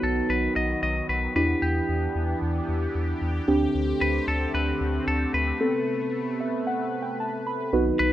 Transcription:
0.00 0.22 B1 loud
0.00 1.34 D#3 medium
0.00 1.34 F#3 medium
0.00 1.32 B3 medium
0.00 1.34 B3 medium
0.00 1.32 D#4 medium
0.00 1.32 F#4 medium
0.00 0.31 A4 medium
0.29 0.48 B1 loud
0.29 0.56 B4 loud
0.56 0.75 B1 loud
0.56 0.82 D#5 loud
0.83 1.01 B1 loud
0.83 1.09 D#5 loud
1.09 1.28 B1 loud
1.09 1.35 B4 medium
1.36 1.54 E2 loud
1.36 3.46 E3 medium
1.36 3.46 B3 medium
1.36 3.44 D4 medium
1.36 3.46 D4 medium
1.36 3.44 E4 medium
1.36 3.44 G4 medium
1.36 5.57 G4 medium
1.36 1.61 B4 loud
1.62 1.81 E2 loud
1.62 2.38 G4 medium
1.89 2.08 E2 loud
2.15 2.34 E2 loud
2.42 2.61 E2 loud
2.69 2.87 E2 medium
2.95 3.14 E2 loud
3.22 3.40 E2 loud
3.48 3.67 D2 loud
3.48 5.59 D3 medium
3.48 7.69 A3 medium
3.48 5.56 C4 medium
3.48 5.59 C4 medium
3.48 5.56 D4 medium
3.48 5.56 G4 medium
3.75 3.93 D2 loud
4.01 4.20 D2 loud
4.01 4.26 B4 loud
4.28 4.46 D2 loud
4.28 4.54 A4 loud
4.54 4.73 D2 loud
4.54 5.07 B4 loud
4.81 4.99 D2 loud
5.07 5.26 D2 loud
5.07 5.34 A4 loud
5.34 5.53 D2 loud
5.34 7.16 B4 loud
5.61 7.71 C3 medium
5.61 7.69 B3 medium
5.61 7.69 C4 medium
5.61 7.69 A4 medium
5.61 7.71 B4 medium
6.40 6.65 E5 medium
6.67 7.00 F#5 medium
7.02 7.19 G5 medium
7.20 7.45 A5 medium
7.47 7.71 B5 medium
7.73 7.92 B1 loud
7.73 8.13 D#3 medium
7.73 8.13 F#3 medium
7.73 8.13 B3 medium
7.73 8.13 D#4 medium
7.73 8.13 F#4 medium
7.73 8.13 B4 medium
7.99 8.13 B1 loud
7.99 8.13 B4 loud

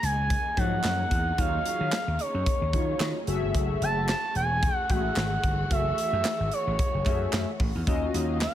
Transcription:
0.00 0.34 C#2 medium
0.00 3.23 C#3 medium
0.00 3.23 D#3 medium
0.00 3.23 A#3 medium
0.00 5.40 C#4 medium
0.00 3.23 D#4 medium
0.00 0.60 G#5 loud
0.00 closed hi-hat medium
0.30 kick loud
0.30 closed hi-hat medium
0.57 0.77 G#2 medium
0.57 1.02 F3 medium
0.57 1.02 F#3 medium
0.57 1.02 D#4 medium
0.57 1.02 C#5 medium
0.57 1.41 F#5 loud
0.57 kick medium
0.57 closed hi-hat medium
0.83 1.04 F#2 medium
0.83 snare medium
0.83 clap medium
0.83 closed hi-hat medium
1.11 1.31 E2 medium
1.11 kick loud
1.11 closed hi-hat medium
1.38 1.58 D#2 loud
1.38 1.96 F#3 medium
1.38 1.97 D#4 medium
1.38 1.97 F4 medium
1.38 1.97 C#5 medium
1.38 2.22 F5 loud
1.38 kick loud
1.38 closed hi-hat loud
1.65 closed hi-hat loud
1.80 1.89 D#3 loud
1.92 snare loud
1.92 clap loud
1.92 clap medium
1.92 closed hi-hat loud
2.07 2.16 D#2 medium
2.19 3.28 C#5 medium
2.19 closed hi-hat medium
2.34 2.43 F#2 medium
2.46 kick loud
2.46 closed hi-hat medium
2.61 2.75 D#2 medium
2.73 2.93 D#3 medium
2.73 3.18 F#3 medium
2.73 3.18 D#4 medium
2.73 3.18 F4 medium
2.73 3.18 C#5 medium
2.73 kick medium
2.73 closed hi-hat medium
3.00 3.11 D#3 loud
3.00 snare loud
3.00 clap loud
3.00 clap medium
3.00 closed hi-hat medium
3.27 3.38 F#1 medium
3.27 7.83 E3 medium
3.27 4.14 A3 medium
3.27 7.83 A3 medium
3.27 4.15 F#4 medium
3.27 7.83 F#4 medium
3.27 4.15 G#4 medium
3.27 7.83 G#4 medium
3.27 4.15 E5 loud
3.27 closed hi-hat medium
3.42 3.51 G1 medium
3.55 3.74 F#1 loud
3.55 kick loud
3.55 closed hi-hat medium
3.81 4.12 F#1 loud
3.81 4.07 A5 loud
3.81 closed hi-hat medium
4.09 4.34 A5 loud
4.09 snare loud
4.09 clap loud
4.09 clap medium
4.09 closed hi-hat medium
4.35 4.66 E1 medium
4.35 4.75 G#5 loud
4.35 closed hi-hat medium
4.63 kick loud
4.63 closed hi-hat medium
4.75 4.91 F#5 loud
4.89 5.09 A1 medium
4.89 4.97 G#3 medium
4.89 5.34 F#4 medium
4.89 5.34 G#4 medium
4.89 5.35 E5 medium
4.89 5.71 F#5 medium
4.89 kick loud
4.89 closed hi-hat medium
4.96 5.37 A3 medium
5.16 5.36 G#1 medium
5.16 snare loud
5.16 clap medium
5.16 closed hi-hat medium
5.43 5.63 G1 loud
5.43 7.85 D#3 medium
5.43 kick medium
5.43 closed hi-hat medium
5.70 5.91 F#1 loud
5.70 6.29 A3 medium
5.70 6.29 F#4 medium
5.70 6.29 G#4 medium
5.70 6.29 E5 medium
5.70 6.55 E5 loud
5.70 kick loud
5.70 closed hi-hat loud
5.98 closed hi-hat loud
6.13 6.21 F#2 loud
6.25 snare loud
6.25 clap loud
6.25 closed hi-hat medium
6.40 6.49 G#1 medium
6.51 7.61 C#5 loud
6.51 closed hi-hat medium
6.67 6.76 A1 loud
6.79 kick loud
6.79 closed hi-hat medium
6.94 7.03 F#1 medium
7.05 7.26 F#2 loud
7.05 7.50 A3 medium
7.05 7.51 F#4 medium
7.05 7.51 G#4 medium
7.05 7.51 E5 medium
7.05 kick medium
7.05 clap medium
7.05 closed hi-hat medium
7.32 7.44 F#2 loud
7.32 snare loud
7.32 clap loud
7.32 clap medium
7.32 closed hi-hat medium
7.60 7.71 A1 medium
7.60 kick loud
7.60 open hi-hat medium
7.75 7.84 E2 medium
7.86 8.07 D#2 loud
7.86 8.54 D#3 medium
7.86 8.54 F#3 medium
7.86 8.54 A#3 medium
7.86 8.45 C#4 medium
7.86 8.54 C#4 medium
7.86 8.45 F4 medium
7.86 8.45 F#4 medium
7.86 8.45 D#5 loud
7.86 8.54 F5 medium
7.86 kick loud
7.86 closed hi-hat loud
8.14 8.45 D#2 loud
8.14 closed hi-hat loud
8.41 8.54 F5 medium
8.41 snare loud
8.41 clap loud
8.41 clap medium
8.41 closed hi-hat medium

